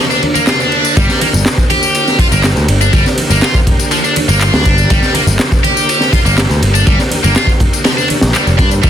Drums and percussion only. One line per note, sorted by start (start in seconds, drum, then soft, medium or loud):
0.11 tambourine soft
0.23 ride medium
0.23 high conga medium
0.35 ride soft
0.35 tambourine medium
0.35 muted conga medium
0.47 snare loud
0.47 clap loud
0.47 ride medium
0.47 tambourine medium
0.60 tambourine soft
0.72 ride medium
0.85 ride soft
0.85 tambourine medium
0.97 kick loud
0.97 ride medium
0.97 tambourine medium
1.09 snare soft
1.09 tambourine soft
1.21 ride medium
1.21 muted conga medium
1.33 ride soft
1.33 tambourine medium
1.33 high conga medium
1.46 snare loud
1.46 clap loud
1.46 ride medium
1.46 tambourine medium
1.58 kick medium
1.58 tambourine soft
1.58 muted conga medium
1.70 ride medium
1.70 high conga medium
1.83 tambourine medium
1.95 ride medium
1.95 tambourine medium
2.08 snare soft
2.08 tambourine soft
2.19 kick loud
2.19 ride medium
2.19 high conga medium
2.32 tambourine medium
2.44 snare loud
2.44 clap loud
2.44 ride medium
2.44 tambourine medium
2.57 tambourine soft
2.68 ride loud
2.68 ride medium
2.81 tambourine medium
2.93 kick loud
2.93 ride loud
2.93 tambourine medium
3.06 snare soft
3.06 tambourine soft
3.18 ride medium
3.18 muted conga medium
3.30 tambourine medium
3.30 high conga medium
3.42 snare loud
3.42 clap loud
3.42 ride loud
3.42 tambourine medium
3.54 kick loud
3.54 tambourine soft
3.54 muted conga medium
3.67 kick loud
3.67 ride medium
3.67 high conga medium
3.67 low conga medium
3.79 ride soft
3.79 tambourine medium
3.91 ride medium
3.91 tambourine medium
4.04 tambourine soft
4.16 ride medium
4.16 high conga medium
4.29 ride soft
4.29 tambourine medium
4.29 muted conga medium
4.41 clap loud
4.41 ride loud
4.41 tambourine medium
4.54 snare loud
4.54 tambourine soft
4.65 kick medium
4.65 ride medium
4.78 ride soft
4.78 tambourine medium
4.90 kick loud
4.90 ride loud
4.90 tambourine medium
5.03 snare soft
5.03 tambourine soft
5.14 ride medium
5.14 muted conga medium
5.27 ride soft
5.27 tambourine medium
5.27 high conga medium
5.39 snare loud
5.39 clap loud
5.39 ride medium
5.39 tambourine medium
5.52 kick loud
5.52 tambourine soft
5.52 muted conga medium
5.64 ride medium
5.64 high conga medium
5.77 tambourine medium
5.89 ride loud
5.89 tambourine medium
6.01 snare soft
6.01 tambourine soft
6.13 kick loud
6.13 ride medium
6.13 high conga medium
6.26 tambourine medium
6.38 snare loud
6.38 clap loud
6.38 ride medium
6.38 tambourine medium
6.51 tambourine soft
6.62 ride medium
6.75 tambourine medium
6.87 kick loud
6.87 ride medium
6.87 tambourine medium
6.99 snare soft
6.99 tambourine soft
7.11 ride medium
7.11 muted conga medium
7.24 tambourine medium
7.24 high conga medium
7.36 snare loud
7.36 clap loud
7.36 ride medium
7.36 tambourine medium
7.47 kick medium
7.47 tambourine soft
7.47 muted conga medium
7.60 kick medium
7.60 ride medium
7.60 high conga medium
7.60 low conga medium
7.73 ride soft
7.73 tambourine medium
7.84 snare loud
7.84 ride medium
7.84 tambourine medium
7.98 tambourine soft
8.08 ride medium
8.10 ride medium
8.10 high conga medium
8.21 snare loud
8.21 ride medium
8.21 tambourine medium
8.21 muted conga medium
8.35 clap loud
8.35 tambourine medium
8.47 ride medium
8.47 tambourine soft
8.59 kick loud
8.59 ride medium
8.71 ride soft
8.71 tambourine medium
8.83 kick loud
8.83 ride medium
8.83 tambourine soft